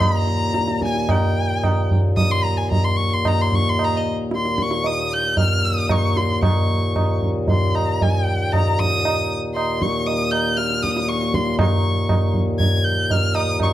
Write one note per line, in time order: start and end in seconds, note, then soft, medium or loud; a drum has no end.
0.00 6.43 D#2 medium
0.00 6.43 A#2 medium
0.00 0.83 A#5 medium
0.00 tabla na medium
0.00 tabla ge medium
0.27 tabla te medium
0.54 tabla te medium
0.68 tabla te medium
0.82 1.12 G#5 medium
0.82 tabla ke medium
0.95 tabla te medium
1.09 1.92 G5 medium
1.09 tabla na loud
1.09 tabla ge medium
1.63 tabla na medium
1.63 tabla ge medium
1.91 tabla ge medium
2.17 2.33 D#6 medium
2.17 tabla tin medium
2.17 tabla ge medium
2.31 2.45 C6 loud
2.44 2.58 A#5 medium
2.57 2.71 G#5 medium
2.71 2.86 A#5 medium
2.71 tabla tin medium
2.71 tabla ge medium
2.84 2.98 C6 medium
2.97 3.15 C#6 medium
3.13 3.29 C6 medium
3.25 3.42 A#5 medium
3.25 tabla na medium
3.25 tabla ge medium
3.41 3.56 C6 medium
3.52 3.70 C#6 medium
3.52 tabla ge medium
3.69 3.86 C6 medium
3.79 tabla na medium
3.84 3.98 A#5 medium
3.97 4.08 D#5 medium
4.31 tabla te medium
4.36 4.64 C6 medium
4.45 tabla te medium
4.58 tabla ke medium
4.62 4.88 C#6 medium
4.71 tabla te medium
4.84 5.15 D#6 medium
4.84 tabla tin medium
5.13 5.39 G6 loud
5.37 5.66 F6 loud
5.37 tabla tin medium
5.37 tabla ge medium
5.65 5.93 D#6 medium
5.89 6.19 C#6 medium
5.89 tabla na medium
5.89 tabla ge medium
6.17 6.43 C6 medium
6.17 tabla te medium
6.43 13.73 D#2 medium
6.43 13.73 A#2 medium
6.43 7.18 C#6 medium
6.43 tabla na loud
6.43 tabla ge medium
6.96 tabla na medium
6.96 tabla ge medium
7.22 tabla ge medium
7.48 7.77 C6 medium
7.48 tabla tin medium
7.48 tabla ge medium
7.75 8.04 A#5 medium
7.75 tabla na medium
8.01 8.27 G#5 medium
8.01 tabla tin medium
8.01 tabla ge medium
8.25 8.54 G5 medium
8.52 8.80 A#5 medium
8.52 tabla na medium
8.52 tabla ge medium
8.79 9.30 D#6 loud
8.79 tabla ge medium
9.05 tabla na medium
9.55 9.84 C6 medium
9.55 tabla na medium
9.82 10.08 C#6 medium
9.82 tabla ke medium
10.07 10.32 D#6 medium
10.07 tabla tin medium
10.31 10.58 G6 loud
10.31 tabla na medium
10.57 10.84 F6 medium
10.57 tabla te medium
10.70 tabla te medium
10.83 11.10 D#6 medium
10.83 tabla ke medium
10.97 tabla te medium
11.08 11.36 C#6 medium
11.08 tabla te medium
11.21 tabla te medium
11.34 11.59 C6 medium
11.34 tabla ke medium
11.47 tabla te soft
11.59 12.32 C#6 medium
11.59 tabla na loud
11.59 tabla ge medium
12.09 tabla na medium
12.09 tabla ge medium
12.34 tabla ge medium
12.60 12.86 G#6 loud
12.60 tabla tin medium
12.60 tabla ge medium
12.84 13.13 G6 medium
13.10 13.37 F6 medium
13.10 tabla tin medium
13.10 tabla ge medium
13.35 13.60 D#6 medium
13.35 tabla na medium
13.60 13.73 C#6 medium
13.60 tabla na medium
13.60 tabla ge medium